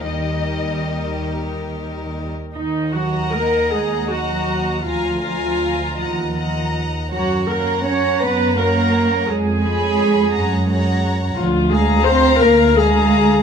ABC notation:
X:1
M:6/8
L:1/16
Q:3/8=54
K:Eb
V:1 name="Violin section"
e6 z6 | [K:Ebm] z2 b6 b4 | b2 b4 b2 b4 | b2 b6 b4 |
z2 c'4 b2 b4 | [K:Bbmix] z2 b6 b4 |]
V:2 name="Violin section"
[GB]8- [GB]3 z | [K:Ebm] z2 [eg]6 [eg]4 | [fa]2 [fa]4 [eg]2 [eg]4 | [dg]2 [dg]6 [dg]4 |
z2 [da]4 [dg]2 [dg]4 | [K:Bbmix] z2 f6 f4 |]
V:3 name="Viola section"
[G,E]8- [G,E]3 z | [K:Ebm] E2 G2 B2 A2 G4 | F8- F2 z2 | G2 B2 d2 c2 B4 |
A8- A2 z2 | [K:Bbmix] F2 A2 c2 B2 A4 |]
V:4 name="Cello section" clef=bass
E,8- E,3 z | [K:Ebm] E,2 G,2 B,2 A,2 G,4 | F,8- F,2 z2 | G,2 B,2 D2 C2 B,4 |
A,8- A,2 z2 | [K:Bbmix] F,2 A,2 C2 B,2 A,4 |]
V:5 name="Double bass section" clef=bass
E,,8- E,,3 z | [K:Ebm] E,,6 E,,6 | =D,,6 E,,6 | G,,6 G,,6 |
F,,6 G,,6 | [K:Bbmix] D,,6 D,,6 |]